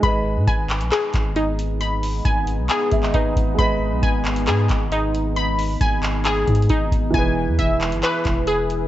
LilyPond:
<<
  \new Staff \with { instrumentName = "Synth pluck" } { \time 4/4 \key gis \minor \tempo 4 = 135 b''4 gis''4 gis'4 dis'4 | b''4 gis''4 gis'4 dis'4 | b''4 gis''4 gis'4 dis'4 | b''4 gis''4 gis'4 dis'4 |
gis''4 e''4 b'4 gis'4 | }
  \new Staff \with { instrumentName = "Grand piano" } { \time 4/4 \key gis \minor << { r1 | r2 r8 e''16 dis''16 b'4 | r1 | r1 |
r1 | } \\ { <gis gis' b' dis''>1~ | <gis gis' b' dis''>1 | <gis gis' b' dis''>1~ | <gis gis' b' dis''>1 |
<e e' gis' b'>1 | } >> }
  \new Staff \with { instrumentName = "Ambient pad" } { \time 4/4 \key gis \minor <gis b dis'>1~ | <gis b dis'>1~ | <gis b dis'>1~ | <gis b dis'>1 |
<e e' gis' b'>1 | }
  \new Staff \with { instrumentName = "808-style bass" } { \clef bass \time 4/4 \key gis \minor gis,,8. gis,16 gis,,8. ais,,16 r8 gis,,4.~ | gis,,4 gis,,8. b,,16 r8 gis,,8 gis,,8 gis,,8 | gis,,8. b,,16 gis,,4 gis,8 gis,,4.~ | gis,,4 gis,,4. gis,8 gis,,8 gis,,8 |
e,,8. e,16 e,,8. g,,16 r8 e,,4. | }
  \new DrumStaff \with { instrumentName = "Drums" } \drummode { \time 4/4 <hh bd>4 <hh bd>8 <hc hh>16 hh16 <hc hh>8 <hc hh bd>8 hh8 hh8 | hh8 hho8 <hh bd>8 hh8 <hc hh>8 <hh bd>16 hc16 <hh bd>8 <hh bd>8 | <hh bd>4 <hh bd>8 <hc hh>16 hh16 <hc hh>8 <hc hh bd>8 hh8 hh8 | hh8 hho8 <hh bd>8 <hc hh>8 \tuplet 3/2 { <hc hh>16 r16 r16 <hh bd>16 hh16 hh16 } <hh bd>8 <hh bd>8 |
<hh bd>4 <hh bd>8 <hc hh>16 hh16 <hc hh>8 <hc hh bd>8 hh8 hh8 | }
>>